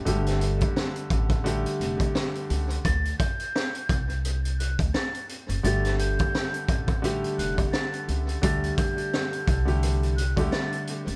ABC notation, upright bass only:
X:1
M:4/4
L:1/16
Q:"Swing 16ths" 1/4=86
K:Dphr
V:1 name="Upright bass" clef=bass
G,,,4 z2 A,,,4 F,,,2 z2 ^C,,2 | D,,2 z4 C,,4- C,, D,, z3 ^F,,, | G,,,4 z2 A,,,4 F,,,2 z2 ^C,,2 | D,,2 z4 C,,4- C,, D,, z3 ^F,,, |]